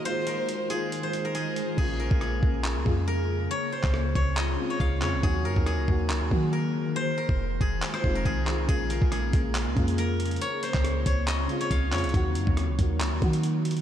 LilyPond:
<<
  \new Staff \with { instrumentName = "Violin section" } { \time 4/4 \key bes \minor \tempo 4 = 139 c''2 r4 ees''8 c''8 | r1 | r1 | r1 |
r1 | r1 | r1 | r1 | }
  \new Staff \with { instrumentName = "Guzheng" } { \time 4/4 \key bes \minor c''8 bes'4 aes'8. c''8 bes'16 aes'4 | aes'8 bes'8 aes'2 bes'4 | des''8 c''4 des''8 ees''8. des''16 f''8 des''8 | aes'8 bes'8 aes'2 bes'4 |
c''8 bes'4 aes'8. c''8 bes'16 aes'4 | aes'8 bes'8 aes'2 bes'4 | des''8 c''4 des''8 ees''8. des''16 f''8 des''8 | r1 | }
  \new Staff \with { instrumentName = "Grand piano" } { \clef bass \time 4/4 \key bes \minor <ees aes f'>4~ <ees aes f'>16 r16 <ees aes f'>4 <ees aes f'>4~ <ees aes f'>16 r16 | <des aes bes f'>4~ <des aes bes f'>16 r16 <des aes bes f'>4 <des aes bes f'>4. | r2 r8 <des aes c' f'>4 <des aes c' f'>8 | <ees ges bes ges'>4~ <ees ges bes ges'>16 r16 <ees ges bes ges'>4 <ees ges bes ges'>4. |
r2 r8 <ees aes c' f'>4 <ees aes c' f'>8 | <des aes bes f'>4~ <des aes bes f'>16 r16 <des aes bes f'>4 <des aes bes f'>4. | r2 r8 <des aes c' f'>4 <des aes c' f'>8 | <ees ges bes ges'>4~ <ees ges bes ges'>16 r16 <ees ges bes ges'>4 <ees ges bes ges'>4. | }
  \new Staff \with { instrumentName = "Ambient pad" } { \clef bass \time 4/4 \key bes \minor r1 | des1~ | des1 | ees1~ |
ees1 | des1~ | des1 | ees1 | }
  \new Staff \with { instrumentName = "808-style bass" } { \clef bass \time 4/4 \key bes \minor r1 | bes,,8. bes,,8. bes,,8. des,16 f,4. | r8. des,8. des,4 r8 des,8 f,16 des,16 | ees,8 ges,16 ees,8 des,16 ees,8 des,16 ees,16 ees4. |
r8. f,,8. f,,8 r8 f,,8 c,4 | bes,,8. bes,,8. bes,,8. des,16 f,4. | r8. des,8. des,4 r8 des,8 f,16 des,16 | ees,8 ges,16 ees,8 des,16 ees,8 des,16 ees,16 ees4. | }
  \new DrumStaff \with { instrumentName = "Drums" } \drummode { \time 4/4 hh8 hh8 hh8 hh8 hh8 hh8 hh8 hh8 | <cymc bd>8. bd16 ss8 bd8 hc8 bd8 r4 | r8. <hc bd>16 ss8 bd8 hc4 bd8 hc8 | bd8. bd16 ss8 bd8 hc8 bd8 r4 |
r8. bd16 r8 bd8 hc16 ss16 bd8 bd8 hc8 | <hh bd>8 hh16 bd16 <hh ss>8 <hh bd>8 <hc hh>8 <hh bd>16 hh16 hh8 hh32 hh32 hh32 hh32 | hh8 hh16 <hc bd>16 <hh ss>8 <hh bd>8 <hc hh>8 hh16 hh16 <hh bd>8 <hc hh hho>32 hh32 hh32 hh32 | <hh bd>8 hh16 bd16 <hh ss>8 <hh bd>8 <hc hh>8 <hh bd>16 hh16 hh8 hh32 hh32 hh16 | }
>>